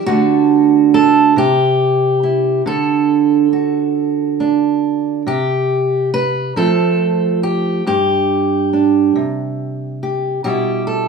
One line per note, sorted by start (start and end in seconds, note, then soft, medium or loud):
0.06 1.37 D3 medium
0.06 1.32 A3 soft
0.06 1.32 D4 soft
0.06 1.36 F#4 loud
0.94 1.37 A4 loud
1.36 2.61 C3 medium
1.36 2.67 G4 loud
2.23 2.61 E4 soft
2.66 5.26 D3 medium
2.66 4.51 A4 loud
3.53 5.21 F#4 soft
4.40 5.22 D4 soft
5.27 6.52 C3 medium
5.27 6.13 G4 loud
6.14 6.57 B4 loud
6.56 7.81 F3 medium
6.56 7.81 A3 soft
6.56 7.87 C4 soft
6.56 7.82 F4 soft
6.56 7.43 A4 loud
7.43 7.86 G4 medium
7.87 9.15 G2 medium
7.87 9.16 G4 medium
8.73 9.11 D4 soft
9.16 10.40 C3 medium
10.03 10.40 G4 medium
10.44 11.08 B2 medium
10.44 11.08 G3 medium
10.44 11.08 E4 medium
10.44 10.86 G4 medium
10.87 11.08 A4 medium